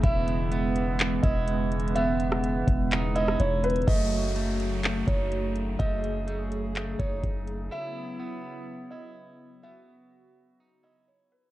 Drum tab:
HH |x-----------x-----------x-----------x-----------x-----------x-----------x-----------x---x---x---|x-----------x-----------x-----------x-----------x-----------x-----------x-----------x--x--x--x--|x-----------x-----------x-----------x-----------x-----------x-----------x-----------x-----------|x-----------x-----------x-----------x-----------x-----------x-----------x-----------x-----------|
CP |------------------------------------------------x-----------------------------------------------|------------------------------------------------x-----------------------------------------------|------------------------------------------------x-----------------------------------------------|------------------------------------------------x-----------------------------------------------|
SD |------------------------------------------------------------------------------------------------|------------------r-----------------------------------------------r-----------------------------|------------------------------------------------------------------------------------------------|------------------------------------------------------------------------------------------------|
BD |o-----------------------------------------------------------o-----------------------------------|------------------------------------o-----------------------------------------------------------|o-----------------------------------------------------------o-----------------------------------|o-----------------------------------------------------------o-----------o-----------------------|

HH |------------------------------------------------------------------------------------------------|------------------------------------------------------------------------------------------------|
CP |------------------------------------------------------------------------------------------------|------------------------------------------------------------------------------------------------|
SD |------------------------------------------------------------------------------------------------|------------------------------------------------------------------------------------------------|
BD |------------------------------------------------------------------------------------------------|------------------------------------------------------------------------------------------------|